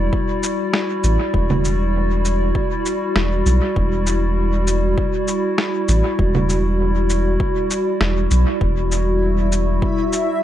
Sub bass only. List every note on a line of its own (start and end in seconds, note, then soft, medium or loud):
1.04 1.18 A1 loud
1.34 2.52 E1 loud
3.16 3.42 E1 medium
3.46 3.60 B1 loud
3.76 4.95 E1 loud
5.89 6.03 A1 loud
6.19 7.37 E1 loud
8.01 8.27 E1 loud
8.31 8.45 B1 loud
8.61 9.80 E1 loud